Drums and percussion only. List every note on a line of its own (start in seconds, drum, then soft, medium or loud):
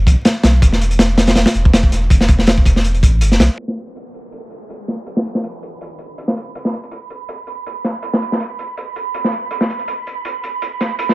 0.07 kick loud
0.07 closed hi-hat medium
0.25 snare loud
0.25 closed hi-hat medium
0.43 snare loud
0.43 closed hi-hat medium
0.62 kick loud
0.62 closed hi-hat medium
0.72 snare soft
0.81 closed hi-hat medium
0.91 closed hi-hat soft
0.99 snare loud
0.99 closed hi-hat medium
1.18 snare loud
1.18 closed hi-hat medium
1.27 snare loud
1.27 closed hi-hat medium
1.35 snare loud
1.35 closed hi-hat medium
1.46 snare loud
1.46 closed hi-hat medium
1.54 closed hi-hat medium
1.65 kick loud
1.74 snare loud
1.74 closed hi-hat medium
1.83 kick medium
1.92 snare soft
1.92 closed hi-hat medium
2.10 kick loud
2.10 closed hi-hat medium
2.21 snare medium
2.28 kick loud
2.28 closed hi-hat medium
2.39 snare medium
2.47 snare loud
2.47 closed hi-hat medium
2.58 kick medium
2.65 kick loud
2.65 closed hi-hat medium
2.76 snare soft
2.84 closed hi-hat medium
2.94 closed hi-hat soft
3.03 kick loud
3.03 closed hi-hat medium
3.21 closed hi-hat medium
3.32 snare medium
3.40 snare loud
3.40 closed hi-hat medium
3.58 closed hi-hat medium
3.68 snare soft
3.77 closed hi-hat medium
3.87 closed hi-hat soft
3.96 closed hi-hat medium
4.14 closed hi-hat medium
4.32 closed hi-hat medium
4.50 closed hi-hat medium
4.70 closed hi-hat medium
4.88 snare soft
4.88 closed hi-hat medium
5.06 closed hi-hat medium
5.17 snare medium
5.26 closed hi-hat medium
5.35 snare soft
5.43 closed hi-hat medium
5.63 closed hi-hat medium
5.81 closed hi-hat medium
5.98 closed hi-hat medium
6.18 closed hi-hat medium
6.28 snare soft
6.37 closed hi-hat medium
6.55 closed hi-hat medium
6.65 snare soft
6.73 closed hi-hat medium
6.83 closed hi-hat soft
6.91 closed hi-hat medium
7.10 closed hi-hat medium
7.29 closed hi-hat medium
7.47 closed hi-hat medium
7.66 closed hi-hat medium
7.84 snare soft
7.84 closed hi-hat medium
8.02 closed hi-hat medium
8.13 snare medium
8.22 closed hi-hat medium
8.32 snare soft
8.40 closed hi-hat medium
8.59 closed hi-hat medium
8.77 closed hi-hat medium
8.96 closed hi-hat medium
9.14 closed hi-hat medium
9.24 snare soft
9.32 closed hi-hat medium
9.51 closed hi-hat medium
9.61 snare soft
9.70 closed hi-hat medium
9.79 closed hi-hat soft
9.88 closed hi-hat medium
10.07 closed hi-hat medium
10.25 closed hi-hat medium
10.44 closed hi-hat medium
10.62 closed hi-hat medium
10.81 snare soft
10.81 closed hi-hat medium
10.99 closed hi-hat medium
11.09 snare medium